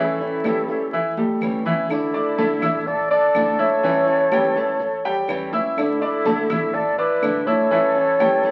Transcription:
Already playing: A1 E3 G3 C#4 E4 A4 E5
0.20 G3 C#4 E4, high conga
0.44 E3 G3 C#4 E4 G4 A4, high conga, claves
0.68 E2 G3 C#4 E4, high conga
0.93 E3 E4 E5, muted nylon-string guitar stroke, high conga
1.17 E2 G3 G4 A4, high conga
1.40 D2 E3 G3 C#4 E4, high conga, claves
1.65 E3 G3 C#4 E4 E5, low conga
1.89 D3 A3 D4 E4 A4, high conga, claves
2.13 A3 D4 E4 D5 D6, high conga
2.38 D3 A3 D4 E4 A4 A5, high conga
2.62 A1 A3 D4 E4 E5 E6, high conga, low conga, claves
2.87 A4 D5, muted nylon-string guitar stroke, high conga
3.10 D4 A4 D5 D6, high conga
3.34 A1 D3 A3 D4 E4, high conga, claves
3.59 A3 D4 E4 A4 C#5 E5 E6, high conga
3.83 E3 G3 C#4 E4 E5, high conga
4.07 G3 C#4 E4, high conga
4.32 E3 G3 C#4 E4 G4 G5, high conga, claves
4.55 E2 G3 A3 C#4 E4 A4 A5, high conga
4.80 muted nylon-string guitar stroke, high conga
5.04 G3 G4 G5, high conga
5.28 D2 E3 G3 C#4 E4, high conga, claves
5.53 G3 C#4 E4 E5 E6, high conga
5.77 D3 A3 D4 E4 A4, high conga, claves
6.01 A3 D4 E4 D5 D6, high conga
6.25 D3 A3 D4 E4 A4 A5, high conga
6.50 A1 A3 D4 E4 E5 E6, high conga, low conga, claves
6.74 A4 D5, muted nylon-string guitar stroke, high conga
6.98 D4 E4 B4 D5 D6, high conga
7.22 A1 D3 A3 D4 E4, high conga, claves
7.46 A3 D4 E4 A4 C#5 E5 E6, high conga
7.70 E3 G3 C#4 E4 E5
7.95 G3 C#4 E4, high conga
8.19 E3 G3 C#4 E4 G4 G5, high conga, claves
8.43 E2 G3 A3 C#4 E4 A4 A5, high conga

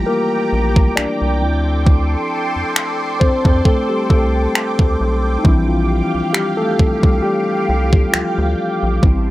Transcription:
Already playing: E3 F3 G3 A3 A#3 E4 F4 G4 G5 A#5 D6
0.06 A#3 A#4
0.53 A#1
0.76 kick
0.96 C2 D4 D5, finger snap
1.22 C2
1.41 D2 F3 C4 E4 A4 C6
1.87 kick
2.56 F2
2.76 finger snap
3.20 F2 C4 C5, kick
3.45 F2, kick
3.65 A3 A4, kick
3.89 G3 G4
4.10 C2 A3 A4, kick
4.55 finger snap
4.79 D2, kick
5.01 B1
5.38 D#4
5.44 A#1 E3 G3 C4 D4 E4 G4 F5, kick
5.68 F3 F4
6.14 C2
6.33 G3 G4, finger snap
6.57 A3 A4
6.79 C2, kick
7.03 C2, kick
7.23 G3 G4
7.69 C2
7.93 kick
8.12 D2 F3 F4, finger snap
8.38 D2
8.83 A#1
9.03 A1 G3 C4 E4 G4 E5 A5 C6, kick

